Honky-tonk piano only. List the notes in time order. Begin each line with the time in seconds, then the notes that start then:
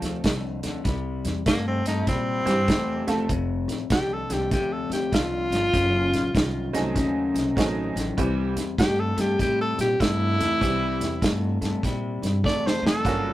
Already playing: F3 A3 C4 F4 A4
2.45 E3 G3 C4 E4 G4
3.07 F3 A3 C4 F4 A4
6.73 F#3 A3 C4 D#4 G#4
7.57 F#3 A3 C4 D#4 G#4
8.18 E3 G3 C4 E4 G4
10.61 E3 G3 C4 E4 G4
13.05 C#3 F#3 A#3 C#4 F#4